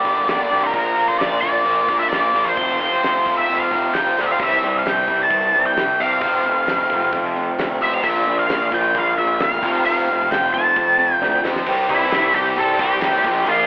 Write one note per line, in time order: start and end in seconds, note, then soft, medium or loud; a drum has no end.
0.00 0.34 A#3 medium
0.00 0.28 D5 medium
0.04 0.19 G1 medium
0.04 0.25 G2 medium
0.04 0.26 D3 medium
0.04 0.27 G3 medium
0.04 0.27 A#3 medium
0.04 0.27 D4 medium
0.04 0.27 G4 medium
0.04 kick medium
0.04 open hi-hat soft
0.27 0.43 G1 medium
0.27 0.49 G2 medium
0.27 0.49 D3 medium
0.27 0.50 G3 medium
0.27 0.50 A#3 medium
0.27 0.50 D4 medium
0.27 0.51 G4 medium
0.27 0.64 D5 medium
0.27 snare loud
0.27 open hi-hat medium
0.50 0.74 C2 medium
0.50 0.72 G2 medium
0.50 0.72 D3 medium
0.50 0.73 G3 medium
0.50 0.73 A#3 medium
0.50 0.73 D4 medium
0.50 0.73 G4 loud
0.50 open hi-hat soft
0.63 0.73 A#4 medium
0.73 1.02 A#1 medium
0.73 0.95 A#2 medium
0.73 0.95 D3 medium
0.73 0.97 F3 loud
0.73 0.95 A#3 medium
0.73 0.96 D4 medium
0.73 0.97 F4 loud
0.73 1.06 A#4 medium
0.73 kick loud
0.73 open hi-hat medium
0.96 1.17 A#2 medium
0.96 1.18 D3 medium
0.96 1.21 F3 medium
0.96 1.18 A#3 medium
0.96 1.19 D4 medium
0.96 1.20 F4 medium
0.96 open hi-hat soft
1.08 1.17 C5 medium
1.08 snare soft
1.17 1.34 A#1 medium
1.17 1.40 A#2 medium
1.17 1.41 D3 medium
1.17 1.43 F3 medium
1.17 1.41 A#3 medium
1.17 1.42 D4 medium
1.17 1.43 F4 medium
1.17 1.40 D5 medium
1.17 snare loud
1.17 open hi-hat medium
1.41 1.56 A#1 medium
1.41 1.63 A#2 medium
1.41 1.64 D3 medium
1.41 1.65 F3 medium
1.41 1.64 A#3 medium
1.41 1.65 D4 medium
1.41 1.65 F4 medium
1.41 1.95 D5 medium
1.41 kick medium
1.41 open hi-hat medium
1.64 1.79 A#1 medium
1.64 1.87 A#2 loud
1.64 1.87 D3 loud
1.64 1.88 F3 loud
1.64 1.88 A#3 loud
1.64 1.88 D4 loud
1.64 1.88 F4 loud
1.64 open hi-hat medium
1.88 2.03 A#1 medium
1.88 2.10 A#2 medium
1.88 2.10 D3 medium
1.88 2.11 F3 medium
1.88 2.11 A#3 medium
1.88 2.11 D4 medium
1.88 2.12 F4 medium
1.88 kick medium
1.88 open hi-hat medium
1.99 2.09 E5 medium
2.09 2.25 A#1 medium
2.09 2.32 A#2 medium
2.09 2.33 D3 medium
2.09 2.34 F3 medium
2.09 2.34 A#3 medium
2.09 2.34 D4 loud
2.09 2.34 F4 medium
2.09 2.46 D5 medium
2.09 snare loud
2.09 open hi-hat medium
2.34 2.48 A#1 medium
2.34 2.56 A#2 medium
2.34 2.56 D3 medium
2.34 2.56 F3 medium
2.34 2.56 A#3 medium
2.34 2.56 D4 medium
2.34 2.56 F4 medium
2.34 open hi-hat soft
2.44 2.79 C5 medium
2.57 2.85 F1 medium
2.57 2.79 F2 medium
2.57 2.79 C3 medium
2.57 2.80 F3 loud
2.57 2.80 A3 loud
2.57 2.80 C4 medium
2.57 2.81 F4 loud
2.57 kick loud
2.57 open hi-hat medium
2.80 3.01 F2 medium
2.80 3.02 C3 medium
2.80 3.02 F3 medium
2.80 3.02 A3 medium
2.80 3.03 C4 medium
2.80 3.03 F4 medium
2.80 3.33 C5 medium
2.80 open hi-hat soft
2.93 snare soft
3.02 3.18 F1 medium
3.02 3.25 F2 medium
3.02 3.25 C3 medium
3.02 3.25 F3 medium
3.02 3.25 A3 medium
3.02 3.26 C4 medium
3.02 3.27 F4 medium
3.02 snare loud
3.02 open hi-hat medium
3.26 3.40 F1 medium
3.26 3.48 F2 medium
3.26 3.48 C3 loud
3.26 3.48 F3 medium
3.26 3.48 A3 medium
3.26 3.49 C4 medium
3.26 3.49 F4 medium
3.26 kick medium
3.26 open hi-hat soft
3.37 3.59 E5 medium
3.49 3.63 F1 medium
3.49 3.70 F2 medium
3.49 3.71 C3 loud
3.49 3.71 F3 medium
3.49 3.71 A3 loud
3.49 3.71 C4 loud
3.49 3.72 F4 loud
3.49 open hi-hat medium
3.60 3.95 F5 medium
3.71 3.86 F1 medium
3.71 3.93 F2 medium
3.71 3.93 C3 medium
3.71 3.94 F3 medium
3.71 3.94 A3 medium
3.71 3.94 C4 medium
3.71 3.94 F4 medium
3.71 kick medium
3.71 open hi-hat soft
3.93 4.09 F1 medium
3.93 4.15 F2 medium
3.93 4.16 C3 medium
3.93 4.16 F3 medium
3.93 4.16 A3 medium
3.93 4.16 C4 medium
3.93 4.17 F4 medium
3.93 4.26 G5 medium
3.93 snare loud
3.93 open hi-hat medium
4.07 snare soft
4.16 4.32 D2 medium
4.16 4.38 F2 medium
4.16 4.37 C3 medium
4.16 4.39 F3 medium
4.16 4.39 A3 medium
4.16 4.39 C4 medium
4.16 4.39 F4 medium
4.16 open hi-hat soft
4.21 4.31 E5 medium
4.31 4.42 F5 medium
4.38 4.57 C2 medium
4.38 5.06 C3 medium
4.38 5.07 E3 medium
4.38 5.06 G3 medium
4.38 5.06 C4 medium
4.38 5.05 E4 medium
4.38 kick loud
4.38 crash loud
4.43 4.74 E5 medium
4.63 4.81 C2 medium
4.63 4.84 C3 medium
4.63 4.84 G3 medium
4.78 4.88 F5 medium
4.86 5.03 C2 medium
4.86 5.07 C3 medium
4.86 5.07 G3 medium
4.86 5.23 G5 loud
4.86 snare loud
4.86 open hi-hat medium
5.06 5.25 C2 medium
5.06 6.19 C3 medium
5.06 6.21 E3 medium
5.06 6.20 G3 medium
5.06 6.20 C4 medium
5.06 6.20 E4 medium
5.06 kick medium
5.23 5.64 A5 loud
5.31 5.49 C2 medium
5.31 5.52 C3 medium
5.31 5.52 G3 medium
5.31 kick loud
5.31 open hi-hat soft
5.54 5.72 C2 medium
5.54 5.75 C3 medium
5.54 5.75 G3 medium
5.66 6.01 G5 medium
5.77 5.94 C2 medium
5.77 5.98 C3 medium
5.77 5.98 G3 medium
5.77 snare loud
5.77 open hi-hat medium
6.00 6.17 C3 medium
6.00 6.21 C3 medium
6.00 6.21 G3 medium
6.00 6.22 C4 loud
6.00 7.82 F5 medium
6.20 6.39 F1 medium
6.20 6.88 F2 medium
6.20 6.88 C3 medium
6.20 6.91 F3 loud
6.20 6.89 A3 medium
6.20 6.89 C4 loud
6.20 6.90 F4 medium
6.20 kick loud
6.20 open hi-hat medium
6.45 6.63 F1 medium
6.45 6.66 F2 medium
6.45 6.66 C3 medium
6.67 6.86 F1 medium
6.67 6.89 F2 medium
6.67 6.89 C3 loud
6.67 snare loud
6.67 open hi-hat medium
6.90 7.08 F1 medium
6.90 8.04 F2 medium
6.90 8.03 C3 medium
6.90 8.03 F3 medium
6.90 8.03 A3 medium
6.90 8.03 C4 medium
6.90 8.05 F4 medium
6.90 kick medium
7.13 7.48 F2 loud
7.13 7.34 F2 medium
7.13 7.35 C3 medium
7.13 kick loud
7.13 open hi-hat medium
7.36 7.57 F2 medium
7.36 7.57 C3 medium
7.59 7.77 D2 loud
7.59 7.79 F2 medium
7.59 7.80 C3 medium
7.59 snare loud
7.59 open hi-hat medium
7.81 8.00 A1 medium
7.81 8.03 F2 medium
7.81 8.03 C3 medium
7.81 8.03 F3 loud
7.81 7.94 E5 medium
7.94 8.04 F5 medium
8.03 8.21 A#1 medium
8.03 8.70 A#2 loud
8.03 8.71 D3 loud
8.03 8.25 F3 loud
8.03 8.71 A#3 loud
8.03 8.71 D4 loud
8.03 8.71 F4 loud
8.03 8.36 E5 medium
8.03 kick loud
8.03 open hi-hat medium
8.27 8.45 A#1 medium
8.27 8.47 A#2 medium
8.27 8.47 F3 medium
8.39 8.70 F5 loud
8.49 8.67 A#1 medium
8.49 8.70 A#2 medium
8.49 8.70 F3 medium
8.49 snare loud
8.49 open hi-hat medium
8.71 8.90 A#1 medium
8.71 9.62 A#2 medium
8.71 9.62 D3 medium
8.71 8.93 F3 medium
8.71 9.62 A#3 medium
8.71 9.62 D4 medium
8.71 9.61 F4 medium
8.71 8.97 G5 medium
8.71 kick medium
8.95 9.12 A#1 loud
8.95 9.16 A#2 medium
8.95 9.16 F3 medium
8.95 9.18 F5 medium
8.95 kick loud
8.95 open hi-hat medium
9.18 9.35 A#1 medium
9.18 9.38 A#2 medium
9.18 9.38 F3 medium
9.18 9.41 E5 medium
9.40 9.62 E1 loud
9.40 9.61 A#2 medium
9.40 9.61 F3 medium
9.40 9.84 F5 medium
9.40 snare loud
9.40 open hi-hat medium
9.62 9.80 F1 loud
9.62 10.28 F2 loud
9.62 10.29 C3 medium
9.62 10.30 F3 loud
9.62 10.30 A3 loud
9.62 10.30 C4 loud
9.62 10.30 F4 loud
9.62 kick loud
9.85 10.04 F1 medium
9.85 10.07 F2 loud
9.85 10.07 C3 loud
9.85 10.08 F3 loud
9.85 10.28 F5 medium
9.85 open hi-hat medium
10.09 10.26 F1 medium
10.09 10.29 F2 medium
10.09 10.29 C3 medium
10.30 10.48 F1 medium
10.30 11.42 F2 medium
10.30 11.43 C3 medium
10.30 11.43 F3 medium
10.30 11.43 A3 medium
10.30 11.43 C4 medium
10.30 11.43 F4 loud
10.30 10.53 G5 medium
10.30 snare loud
10.30 open hi-hat medium
10.54 10.71 F1 loud
10.54 10.75 F2 medium
10.54 10.75 C3 medium
10.54 11.16 A5 loud
10.54 kick medium
10.76 11.11 F2 medium
10.76 10.97 F2 medium
10.76 10.97 C3 medium
10.76 kick medium
10.76 open hi-hat soft
10.98 11.19 F2 medium
10.98 11.19 C3 medium
11.16 11.40 G5 loud
11.21 11.39 D2 medium
11.21 11.42 F2 medium
11.21 11.42 C3 medium
11.21 snare medium
11.43 11.65 F2 medium
11.43 11.61 F2 medium
11.43 11.65 C3 medium
11.43 11.66 F3 loud
11.43 snare medium
11.56 snare medium
11.66 11.86 C2 medium
11.66 11.88 C3 loud
11.66 11.88 E3 medium
11.66 11.89 G3 loud
11.66 11.89 C4 loud
11.66 11.89 G4 loud
11.66 kick loud
11.66 crash loud
11.89 12.08 C2 medium
11.89 12.10 C3 medium
11.89 12.11 E3 medium
11.89 12.12 G3 medium
11.89 12.11 C4 medium
11.89 12.32 E4 loud
11.89 12.12 G4 loud
11.89 kick loud
11.89 ride medium
12.11 12.31 C2 medium
12.11 12.33 C3 loud
12.11 12.33 E3 loud
12.11 12.34 G3 loud
12.11 12.34 C4 loud
12.11 12.34 G4 loud
12.11 snare loud
12.11 ride loud
12.34 12.53 C2 medium
12.34 12.55 C3 medium
12.34 12.56 E3 medium
12.34 12.56 G3 medium
12.34 12.57 C4 medium
12.34 12.58 G4 medium
12.34 12.57 G4 loud
12.34 kick medium
12.34 ride medium
12.56 12.76 C2 medium
12.56 12.78 C3 medium
12.56 12.78 E3 loud
12.56 12.78 G3 loud
12.56 12.79 C4 loud
12.56 12.79 G4 loud
12.56 12.81 A4 loud
12.56 ride medium
12.79 12.98 C2 medium
12.79 13.00 C3 medium
12.79 13.00 E3 medium
12.79 13.00 G3 medium
12.79 13.01 C4 medium
12.79 13.01 G4 medium
12.79 13.49 G4 loud
12.79 kick medium
12.79 ride medium
13.01 13.20 A1 medium
13.01 13.23 C3 loud
13.01 13.23 E3 loud
13.01 13.23 G3 loud
13.01 13.24 C4 loud
13.01 13.24 G4 loud
13.01 snare loud
13.01 ride loud
13.24 13.43 A#1 loud
13.24 13.46 A#2 loud
13.24 13.46 D3 loud
13.24 13.47 F3 loud
13.24 13.46 A#3 loud
13.24 13.47 D4 loud
13.24 13.47 F4 loud
13.24 kick loud
13.24 ride medium
13.46 13.66 A#1 loud
13.46 13.67 A#2 loud
13.46 13.67 D3 loud
13.46 13.67 F3 loud
13.46 13.67 A#3 loud
13.46 13.67 D4 loud
13.46 13.67 F4 loud
13.46 13.67 F4 medium
13.46 ride loud